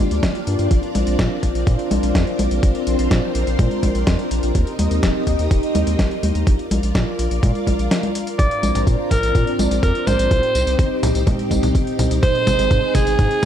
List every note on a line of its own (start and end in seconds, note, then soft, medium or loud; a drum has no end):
0.00 0.67 A#3 medium
0.00 4.51 D4 medium
0.00 4.51 F4 medium
0.00 0.67 G4 medium
0.00 2.59 D5 medium
0.11 0.20 D2 medium
0.11 closed hi-hat soft
0.23 0.32 G1 loud
0.23 kick loud
0.23 snare loud
0.23 closed hi-hat medium
0.35 closed hi-hat soft
0.47 0.56 G2 medium
0.47 closed hi-hat medium
0.59 0.68 G2 medium
0.59 closed hi-hat medium
0.71 0.80 A#1 loud
0.71 6.43 C4 medium
0.71 6.43 A#4 medium
0.71 kick loud
0.71 closed hi-hat medium
0.83 closed hi-hat soft
0.95 1.04 A#1 loud
0.95 closed hi-hat medium
0.95 high conga medium
1.07 1.16 A#1 medium
1.07 closed hi-hat soft
1.19 1.28 A#2 loud
1.19 kick loud
1.19 snare loud
1.19 closed hi-hat medium
1.43 1.52 A#1 medium
1.43 kick medium
1.43 closed hi-hat medium
1.55 1.64 A#1 medium
1.55 closed hi-hat soft
1.67 1.76 A#2 loud
1.67 kick loud
1.67 closed hi-hat medium
1.79 closed hi-hat soft
1.91 2.00 A#1 medium
1.91 closed hi-hat medium
1.91 high conga medium
2.03 2.12 A#1 medium
2.03 closed hi-hat soft
2.15 2.24 F2 loud
2.15 kick loud
2.15 snare loud
2.15 closed hi-hat medium
2.27 closed hi-hat soft
2.39 2.48 A#1 medium
2.39 closed hi-hat medium
2.39 high conga medium
2.51 2.60 A#1 medium
2.51 closed hi-hat soft
2.63 2.72 A#1 medium
2.63 4.53 C5 medium
2.63 kick loud
2.63 closed hi-hat medium
2.75 closed hi-hat soft
2.87 2.96 A#1 medium
2.87 closed hi-hat medium
2.99 3.08 A#1 medium
2.99 closed hi-hat medium
3.11 3.20 A#2 loud
3.11 kick loud
3.11 snare loud
3.11 closed hi-hat medium
3.35 3.44 A#1 medium
3.35 closed hi-hat medium
3.47 3.56 A#1 medium
3.47 closed hi-hat soft
3.59 3.68 A#2 loud
3.59 kick loud
3.59 closed hi-hat medium
3.59 high conga medium
3.71 closed hi-hat soft
3.83 3.92 A#1 medium
3.83 kick medium
3.83 closed hi-hat medium
3.83 high conga medium
3.95 4.04 A#1 medium
3.95 closed hi-hat medium
4.07 4.16 F2 loud
4.07 kick loud
4.07 snare loud
4.07 closed hi-hat medium
4.19 closed hi-hat soft
4.31 4.40 A#1 medium
4.31 closed hi-hat medium
4.43 4.52 A#1 medium
4.43 closed hi-hat medium
4.55 4.64 D#2 loud
4.55 6.45 D#4 medium
4.55 6.45 G4 medium
4.55 6.45 D#5 medium
4.55 kick loud
4.55 closed hi-hat medium
4.67 closed hi-hat soft
4.79 4.88 D#2 medium
4.79 closed hi-hat medium
4.79 high conga medium
4.91 5.00 D#2 medium
4.91 closed hi-hat medium
5.03 5.12 D#1 medium
5.03 kick loud
5.03 snare loud
5.03 closed hi-hat medium
5.27 5.36 D#2 medium
5.27 kick medium
5.27 closed hi-hat medium
5.39 5.48 D#2 medium
5.39 closed hi-hat medium
5.51 5.60 D#1 loud
5.51 kick loud
5.51 closed hi-hat medium
5.63 closed hi-hat soft
5.75 5.84 D#2 medium
5.75 closed hi-hat medium
5.75 high conga medium
5.87 5.96 D#2 medium
5.87 closed hi-hat medium
5.99 6.08 A#1 loud
5.99 kick loud
5.99 snare loud
5.99 closed hi-hat medium
6.11 closed hi-hat soft
6.23 6.32 D#2 medium
6.23 closed hi-hat medium
6.23 high conga medium
6.35 6.44 D#2 medium
6.35 closed hi-hat medium
6.47 6.56 A#1 loud
6.47 8.37 F4 medium
6.47 8.37 A#4 medium
6.47 8.37 D5 medium
6.47 kick loud
6.47 closed hi-hat medium
6.59 closed hi-hat soft
6.71 6.80 A#1 medium
6.71 closed hi-hat medium
6.71 high conga medium
6.83 6.92 A#1 medium
6.83 closed hi-hat medium
6.95 7.04 A#2 loud
6.95 kick loud
6.95 snare loud
6.95 closed hi-hat medium
7.19 7.28 A#1 medium
7.19 closed hi-hat medium
7.31 7.40 A#1 medium
7.31 closed hi-hat medium
7.43 7.52 A#2 loud
7.43 kick loud
7.43 closed hi-hat medium
7.43 high conga medium
7.55 closed hi-hat soft
7.67 7.76 A#1 medium
7.67 kick medium
7.67 closed hi-hat medium
7.67 high conga medium
7.79 7.88 A#1 medium
7.79 closed hi-hat medium
7.91 snare loud
7.91 closed hi-hat medium
8.03 closed hi-hat soft
8.03 high conga medium
8.15 closed hi-hat medium
8.27 closed hi-hat medium
8.39 8.48 A#1 loud
8.39 13.45 C4 medium
8.39 10.29 D4 medium
8.39 10.29 F4 medium
8.39 10.29 A#4 medium
8.39 8.84 D5 loud
8.39 10.29 D5 medium
8.39 kick loud
8.39 closed hi-hat medium
8.39 mid tom soft
8.39 tambourine soft
8.51 closed hi-hat soft
8.63 8.72 A#1 loud
8.63 closed hi-hat medium
8.63 tambourine medium
8.63 high conga medium
8.75 8.84 A#1 medium
8.75 closed hi-hat medium
8.75 mid tom soft
8.75 tambourine soft
8.87 8.96 A#2 loud
8.87 kick loud
8.87 closed hi-hat medium
8.87 tambourine soft
9.11 9.20 A#1 medium
9.11 9.56 A#4 loud
9.11 kick medium
9.11 closed hi-hat medium
9.11 mid tom medium
9.11 tambourine medium
9.23 9.32 A#1 medium
9.23 closed hi-hat medium
9.23 tambourine soft
9.35 9.44 A#2 loud
9.35 kick loud
9.35 closed hi-hat medium
9.35 mid tom soft
9.35 tambourine soft
9.47 closed hi-hat soft
9.59 9.68 A#1 medium
9.59 closed hi-hat medium
9.59 tambourine medium
9.59 high conga medium
9.71 9.80 A#1 medium
9.71 closed hi-hat medium
9.71 tambourine soft
9.83 9.92 F2 loud
9.83 10.09 A#4 loud
9.83 kick loud
9.83 closed hi-hat medium
9.83 tambourine soft
9.95 closed hi-hat soft
10.07 10.16 A#1 medium
10.07 11.03 C5 loud
10.07 closed hi-hat medium
10.07 mid tom medium
10.07 tambourine medium
10.07 high conga medium
10.19 10.28 A#1 medium
10.19 closed hi-hat medium
10.19 tambourine soft
10.31 10.40 C2 loud
10.31 13.45 D#4 medium
10.31 12.21 G4 medium
10.31 kick loud
10.31 closed hi-hat medium
10.31 mid tom medium
10.31 tambourine soft
10.43 closed hi-hat soft
10.55 10.64 C2 loud
10.55 closed hi-hat medium
10.55 tambourine medium
10.67 10.76 C2 medium
10.67 closed hi-hat medium
10.67 tambourine soft
10.79 10.88 G1 loud
10.79 kick loud
10.79 closed hi-hat medium
10.79 tambourine soft
11.03 11.12 C2 medium
11.03 closed hi-hat medium
11.03 mid tom medium
11.03 tambourine medium
11.15 11.24 C2 medium
11.15 closed hi-hat medium
11.15 tambourine soft
11.27 11.36 G1 loud
11.27 kick loud
11.27 closed hi-hat medium
11.27 mid tom medium
11.27 tambourine soft
11.27 high conga medium
11.39 closed hi-hat soft
11.51 11.60 C2 medium
11.51 kick medium
11.51 closed hi-hat medium
11.51 tambourine medium
11.51 high conga medium
11.63 11.72 C2 medium
11.63 closed hi-hat medium
11.63 mid tom medium
11.63 tambourine soft
11.75 11.84 G1 loud
11.75 kick loud
11.75 closed hi-hat medium
11.75 tambourine soft
11.87 closed hi-hat soft
11.99 12.08 C2 medium
11.99 closed hi-hat medium
11.99 mid tom medium
11.99 tambourine medium
12.11 12.20 C2 medium
12.11 closed hi-hat medium
12.11 tambourine soft
12.23 12.32 G#1 medium
12.23 13.45 G#4 medium
12.23 12.96 C5 loud
12.23 kick loud
12.23 closed hi-hat medium
12.23 mid tom medium
12.23 tambourine soft
12.35 closed hi-hat soft
12.47 12.56 G#1 loud
12.47 closed hi-hat medium
12.47 mid tom medium
12.47 tambourine medium
12.47 high conga medium
12.59 12.68 G#1 medium
12.59 closed hi-hat soft
12.59 tambourine soft
12.71 12.80 G#2 loud
12.71 kick loud
12.71 closed hi-hat medium
12.71 mid tom medium
12.71 tambourine soft
12.95 13.04 G#1 medium
12.95 13.45 G#4 loud
12.95 kick medium
12.95 closed hi-hat medium
12.95 mid tom medium
12.95 tambourine medium
13.07 13.16 G#1 medium
13.07 closed hi-hat soft
13.07 tambourine soft
13.19 13.28 G#2 loud
13.19 kick loud
13.19 closed hi-hat medium
13.19 mid tom medium
13.19 tambourine soft
13.31 closed hi-hat soft